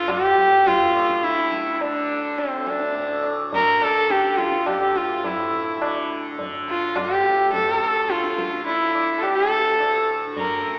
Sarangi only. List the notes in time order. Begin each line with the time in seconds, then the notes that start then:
Already playing: F4
0.10 G4
0.67 F4
1.24 E4
1.74 E4
1.82 D4
2.39 C4
2.68 D4
3.55 A#4
3.83 A4
4.11 G4
4.38 F4
4.67 G4
4.97 F4
5.25 E4
6.69 F4
6.97 F4
7.14 G4
7.53 A4
8.10 F4
8.66 E4
9.19 G4 A4
9.36 A4
10.38 A#4